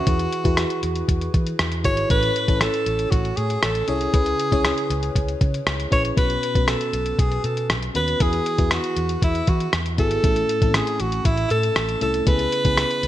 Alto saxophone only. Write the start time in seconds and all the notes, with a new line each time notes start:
Already playing: F#4
1.85 C#5
2.11 B4
2.61 A4
3.11 F#4
3.37 G#4
3.63 A4
3.88 G#4
5.92 C#5
6.18 B4
6.68 A4
7.19 G#4
7.45 A4
7.96 B4
8.22 G#4
8.73 F#4
9.24 E4
9.49 F#4
10.00 A4
10.76 G#4
11.01 F#4
11.26 E4
11.51 A4
12.03 A4
12.27 B4